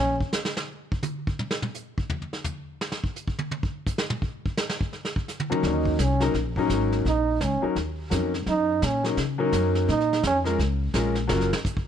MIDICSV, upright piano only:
0, 0, Header, 1, 2, 480
1, 0, Start_track
1, 0, Tempo, 353774
1, 1891, Time_signature, 4, 2, 24, 8
1, 16116, End_track
2, 0, Start_track
2, 0, Title_t, "Upright piano"
2, 0, Program_c, 0, 0
2, 7459, Note_on_c, 0, 54, 74
2, 7459, Note_on_c, 0, 58, 67
2, 7471, Note_on_c, 0, 61, 69
2, 7478, Note_on_c, 0, 63, 66
2, 7482, Note_on_c, 0, 70, 77
2, 8089, Note_off_c, 0, 58, 0
2, 8090, Note_off_c, 0, 54, 0
2, 8095, Note_off_c, 0, 61, 0
2, 8099, Note_off_c, 0, 63, 0
2, 8101, Note_off_c, 0, 70, 0
2, 8412, Note_on_c, 0, 54, 73
2, 8419, Note_on_c, 0, 58, 69
2, 8424, Note_on_c, 0, 61, 66
2, 8436, Note_on_c, 0, 63, 72
2, 8440, Note_on_c, 0, 70, 91
2, 8584, Note_off_c, 0, 54, 0
2, 8587, Note_off_c, 0, 58, 0
2, 8590, Note_off_c, 0, 61, 0
2, 8596, Note_off_c, 0, 63, 0
2, 8598, Note_off_c, 0, 70, 0
2, 8915, Note_on_c, 0, 54, 81
2, 8919, Note_on_c, 0, 58, 76
2, 8929, Note_on_c, 0, 61, 79
2, 8931, Note_on_c, 0, 63, 77
2, 8938, Note_on_c, 0, 70, 87
2, 9537, Note_off_c, 0, 54, 0
2, 9539, Note_off_c, 0, 58, 0
2, 9544, Note_off_c, 0, 61, 0
2, 9545, Note_off_c, 0, 63, 0
2, 9549, Note_off_c, 0, 70, 0
2, 10338, Note_on_c, 0, 54, 77
2, 10343, Note_on_c, 0, 58, 65
2, 10350, Note_on_c, 0, 61, 62
2, 10351, Note_on_c, 0, 63, 62
2, 10363, Note_on_c, 0, 70, 76
2, 10507, Note_off_c, 0, 54, 0
2, 10509, Note_off_c, 0, 58, 0
2, 10513, Note_off_c, 0, 61, 0
2, 10513, Note_off_c, 0, 63, 0
2, 10519, Note_off_c, 0, 70, 0
2, 10990, Note_on_c, 0, 54, 60
2, 10994, Note_on_c, 0, 58, 60
2, 11006, Note_on_c, 0, 61, 61
2, 11013, Note_on_c, 0, 63, 55
2, 11016, Note_on_c, 0, 70, 68
2, 11270, Note_off_c, 0, 54, 0
2, 11272, Note_off_c, 0, 58, 0
2, 11278, Note_off_c, 0, 61, 0
2, 11282, Note_off_c, 0, 63, 0
2, 11283, Note_off_c, 0, 70, 0
2, 12254, Note_on_c, 0, 54, 64
2, 12260, Note_on_c, 0, 58, 65
2, 12278, Note_on_c, 0, 61, 63
2, 12279, Note_on_c, 0, 63, 61
2, 12284, Note_on_c, 0, 70, 69
2, 12425, Note_off_c, 0, 54, 0
2, 12427, Note_off_c, 0, 58, 0
2, 12436, Note_off_c, 0, 61, 0
2, 12437, Note_off_c, 0, 63, 0
2, 12439, Note_off_c, 0, 70, 0
2, 12729, Note_on_c, 0, 54, 90
2, 12739, Note_on_c, 0, 61, 80
2, 12740, Note_on_c, 0, 58, 79
2, 12752, Note_on_c, 0, 63, 70
2, 12752, Note_on_c, 0, 70, 92
2, 13363, Note_off_c, 0, 54, 0
2, 13368, Note_off_c, 0, 61, 0
2, 13369, Note_off_c, 0, 58, 0
2, 13375, Note_off_c, 0, 63, 0
2, 13375, Note_off_c, 0, 70, 0
2, 14169, Note_on_c, 0, 56, 77
2, 14184, Note_on_c, 0, 58, 68
2, 14185, Note_on_c, 0, 61, 64
2, 14195, Note_on_c, 0, 65, 68
2, 14197, Note_on_c, 0, 70, 85
2, 14341, Note_off_c, 0, 56, 0
2, 14349, Note_off_c, 0, 58, 0
2, 14349, Note_off_c, 0, 61, 0
2, 14354, Note_off_c, 0, 65, 0
2, 14355, Note_off_c, 0, 70, 0
2, 14839, Note_on_c, 0, 56, 75
2, 14842, Note_on_c, 0, 58, 70
2, 14844, Note_on_c, 0, 61, 62
2, 14862, Note_on_c, 0, 65, 66
2, 14865, Note_on_c, 0, 70, 79
2, 15113, Note_off_c, 0, 56, 0
2, 15115, Note_off_c, 0, 58, 0
2, 15116, Note_off_c, 0, 61, 0
2, 15125, Note_off_c, 0, 65, 0
2, 15126, Note_off_c, 0, 70, 0
2, 15298, Note_on_c, 0, 54, 84
2, 15308, Note_on_c, 0, 58, 70
2, 15312, Note_on_c, 0, 61, 65
2, 15322, Note_on_c, 0, 65, 79
2, 15327, Note_on_c, 0, 70, 84
2, 15582, Note_off_c, 0, 54, 0
2, 15588, Note_off_c, 0, 58, 0
2, 15589, Note_off_c, 0, 61, 0
2, 15594, Note_off_c, 0, 65, 0
2, 15597, Note_off_c, 0, 70, 0
2, 16116, End_track
0, 0, End_of_file